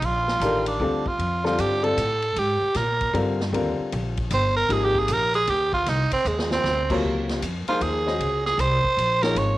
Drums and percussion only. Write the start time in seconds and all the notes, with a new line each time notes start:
0.02 ride
0.28 snare
0.41 hi-hat pedal, ride
0.66 ride
1.06 kick
1.19 ride
1.45 snare
1.58 hi-hat pedal, ride
1.84 ride
1.98 hi-hat pedal, ride
2.22 ride
2.36 ride
2.75 snare, hi-hat pedal, ride
3.01 kick, ride
3.15 ride
3.40 snare
3.54 ride
3.92 ride
4.17 kick, ride
4.30 hi-hat pedal, ride
4.70 ride
4.95 kick
5.08 hi-hat pedal, ride
5.34 ride
5.47 ride
5.73 kick
5.86 snare, ride
6.11 kick, ride
6.25 hi-hat pedal
6.39 snare
6.51 snare
6.65 snare
6.90 kick, crash
7.29 snare, ride
7.42 hi-hat pedal, ride
7.68 ride
7.81 ride
8.07 snare
8.20 ride
8.46 snare
8.59 hi-hat pedal, ride
8.84 kick
8.98 ride
9.23 snare, ride
9.36 ride